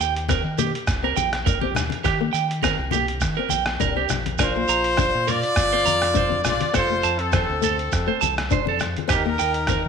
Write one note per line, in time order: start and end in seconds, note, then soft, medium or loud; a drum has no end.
0.00 0.42 D#2 medium
0.00 0.13 G5 medium
0.00 closed hi-hat medium
0.00 shekere medium
0.16 closed hi-hat medium
0.29 0.46 C4 medium
0.29 0.43 A#4 medium
0.29 kick medium
0.29 cross-stick medium
0.29 closed hi-hat medium
0.29 high conga medium
0.29 shekere loud
0.44 0.72 D#3 loud
0.58 0.75 A#3 medium
0.58 0.72 G4 medium
0.58 closed hi-hat soft
0.58 low conga medium
0.58 shekere medium
0.75 closed hi-hat medium
0.87 1.15 C2 medium
0.87 kick medium
0.87 cross-stick medium
0.87 closed hi-hat medium
0.87 shekere medium
1.03 1.20 C4 medium
1.03 1.15 A#4 medium
1.16 1.72 A#1 medium
1.16 1.30 G5 medium
1.16 closed hi-hat medium
1.16 high conga medium
1.16 shekere medium
1.33 cross-stick medium
1.33 closed hi-hat medium
1.46 1.59 A#4 medium
1.46 muted steel-string acoustic guitar stroke medium
1.46 kick medium
1.46 closed hi-hat medium
1.46 low conga medium
1.46 shekere loud
1.61 1.80 C4 medium
1.61 1.73 G4 medium
1.61 high conga medium
1.75 1.91 D#2 medium
1.75 cross-stick medium
1.75 closed hi-hat soft
1.75 low conga medium
1.75 shekere medium
1.90 closed hi-hat medium
1.90 high conga medium
2.04 2.33 D#3 medium
2.04 2.18 G4 medium
2.04 muted steel-string acoustic guitar stroke medium
2.04 kick medium
2.04 cross-stick medium
2.04 closed hi-hat medium
2.04 shekere medium
2.20 2.38 A#3 medium
2.33 2.76 D#3 medium
2.33 2.46 G5 medium
2.33 closed hi-hat soft
2.33 shekere medium
2.51 closed hi-hat medium
2.62 2.81 C4 medium
2.62 2.76 A#4 medium
2.62 kick medium
2.62 cross-stick medium
2.62 closed hi-hat soft
2.62 high conga medium
2.62 shekere loud
2.79 3.19 C2 medium
2.91 3.10 A#3 medium
2.91 3.05 G4 medium
2.91 closed hi-hat soft
2.91 high conga medium
2.91 low conga medium
2.91 shekere medium
3.08 closed hi-hat soft
3.21 3.37 D#3 medium
3.21 kick medium
3.21 cross-stick medium
3.21 closed hi-hat soft
3.21 shekere medium
3.37 3.55 C4 medium
3.37 3.49 A#4 medium
3.49 3.79 A#1 medium
3.49 3.64 G5 medium
3.49 closed hi-hat soft
3.49 high conga medium
3.49 shekere medium
3.66 cross-stick medium
3.66 closed hi-hat soft
3.80 4.07 C2 medium
3.80 3.89 D4 medium
3.80 3.94 A#4 medium
3.80 kick medium
3.80 closed hi-hat soft
3.80 low conga medium
3.80 shekere medium
3.96 4.13 C4 medium
3.96 4.08 G4 medium
4.09 4.37 A#1 medium
4.09 cross-stick medium
4.09 closed hi-hat soft
4.09 low conga medium
4.09 shekere medium
4.26 closed hi-hat soft
4.26 high conga medium
4.38 4.68 A#1 loud
4.38 4.49 D4 medium
4.38 5.25 F4 medium
4.38 4.53 A#4 medium
4.38 kick medium
4.38 cross-stick medium
4.38 closed hi-hat soft
4.38 shekere loud
4.43 5.26 C5 loud
4.56 4.73 A#3 medium
4.68 5.11 A#1 medium
4.68 4.82 A#5 medium
4.68 closed hi-hat medium
4.68 shekere medium
4.84 closed hi-hat medium
4.97 5.15 D4 medium
4.97 5.11 C5 medium
4.97 kick medium
4.97 cross-stick medium
4.97 closed hi-hat medium
4.97 high conga medium
4.97 shekere loud
5.15 5.42 A#2 medium
5.27 5.44 A#3 medium
5.27 6.43 F4 medium
5.27 5.41 A#4 medium
5.27 6.44 D5 loud
5.27 closed hi-hat medium
5.27 low conga medium
5.27 shekere medium
5.43 closed hi-hat medium
5.56 5.85 G1 medium
5.56 kick medium
5.56 cross-stick medium
5.56 closed hi-hat medium
5.56 shekere loud
5.73 5.90 C4 medium
5.73 5.84 C5 medium
5.85 6.41 F2 medium
5.85 5.99 A#5 medium
5.85 closed hi-hat medium
5.85 high conga medium
5.85 shekere medium
6.02 cross-stick medium
6.02 closed hi-hat medium
6.14 6.24 D4 medium
6.14 6.29 C5 medium
6.14 kick medium
6.14 closed hi-hat medium
6.14 low conga medium
6.14 shekere loud
6.29 6.47 C4 medium
6.29 high conga medium
6.44 6.60 A#1 medium
6.44 6.72 F4 medium
6.44 6.72 D5 loud
6.44 cross-stick medium
6.44 closed hi-hat soft
6.44 low conga medium
6.44 shekere medium
6.60 closed hi-hat medium
6.60 high conga medium
6.73 7.02 F1 medium
6.73 6.83 C4 medium
6.73 7.17 F4 medium
6.73 6.88 A4 medium
6.73 7.17 C5 loud
6.73 kick medium
6.73 cross-stick medium
6.73 closed hi-hat medium
6.73 shekere loud
6.90 7.07 A3 medium
7.03 7.46 F2 medium
7.03 7.17 A5 medium
7.03 closed hi-hat medium
7.03 shekere medium
7.19 8.37 C4 medium
7.19 8.37 A4 medium
7.19 closed hi-hat medium
7.32 7.50 C4 medium
7.32 7.46 C5 medium
7.32 kick medium
7.32 cross-stick medium
7.32 closed hi-hat soft
7.32 high conga medium
7.32 shekere loud
7.49 7.90 D2 medium
7.61 7.79 A3 medium
7.61 7.76 A4 medium
7.61 closed hi-hat medium
7.61 low conga medium
7.61 shekere medium
7.79 closed hi-hat soft
7.92 8.07 F2 medium
7.92 kick loud
7.92 cross-stick medium
7.92 closed hi-hat medium
7.92 shekere medium
8.07 8.24 A3 medium
8.07 8.19 C5 medium
8.21 8.49 C2 loud
8.21 8.34 A5 medium
8.21 closed hi-hat soft
8.21 high conga medium
8.21 shekere medium
8.38 cross-stick medium
8.38 closed hi-hat soft
8.51 8.60 D4 medium
8.51 8.65 C5 medium
8.51 kick medium
8.51 closed hi-hat soft
8.51 low conga medium
8.51 shekere medium
8.65 8.95 F2 medium
8.65 8.83 C4 medium
8.65 8.79 A4 medium
8.65 high conga medium
8.79 cross-stick medium
8.79 closed hi-hat soft
8.79 low conga medium
8.79 shekere medium
8.97 closed hi-hat soft
8.97 high conga medium
9.08 9.37 D#2 loud
9.08 9.17 C4 medium
9.08 9.88 D#4 medium
9.08 9.23 G4 medium
9.08 kick medium
9.08 cross-stick medium
9.08 closed hi-hat soft
9.08 shekere medium
9.13 9.88 A#4 loud
9.25 9.42 A#3 medium
9.39 9.82 D#2 medium
9.39 9.52 G5 medium
9.39 closed hi-hat medium
9.39 shekere medium
9.54 closed hi-hat medium
9.67 9.86 C4 medium
9.67 9.82 A#4 medium
9.67 kick medium
9.67 cross-stick medium
9.67 closed hi-hat medium
9.67 high conga medium
9.67 shekere medium